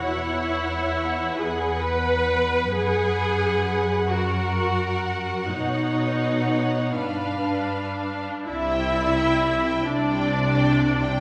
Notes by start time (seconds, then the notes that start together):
Already playing: C#5 F#5
0.04 E2 E4
1.38 G#4 B4
1.82 B4
2.72 F#2 G#4 F#5
4.09 F#4 A#4
5.50 B2 D#4
5.54 C#5
6.97 G2 D4 B4 F5
8.47 C2 C3 E4 D5 E5
8.72 G5
8.96 D5
9.19 G5
9.42 D5
9.65 G5
9.87 C2 C3 D4 D5
10.11 G5
10.33 D5
10.55 G5
10.79 D5
11.04 G5